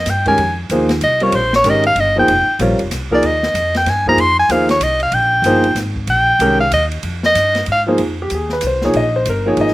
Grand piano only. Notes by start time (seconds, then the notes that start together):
0.26 D#3 G#3 C#4 G4 A#4
0.71 F3 A#3 D#4 G#4 C5
1.21 G3 C4 F4 A#4 C#5
1.65 D#3 G#3 C#4 G4 A#4
2.16 F3 A#3 D#4 G#4 C5
2.60 G3 C4 F4 A#4 C#5
3.11 F3 A#3 D#4 G#4 A#4
4.07 F3 A#3 D#4 G#4 C5
4.50 F3 A#3 D#4 G#4 C5
5.46 F3 A#3 D#4 G#4 C5
6.41 D#3 G#3 C#4 G4 A#4
7.87 F3 A#3 D#4 G#4 C5
8.22 G4
8.35 G#4
8.53 B4
8.67 C5
8.84 F3 A#3 D#4 G#4 C#5
8.97 D#5
9.16 C5
9.29 A#4
9.46 F3 A#3 D#4 G#4 C#5
9.61 D#5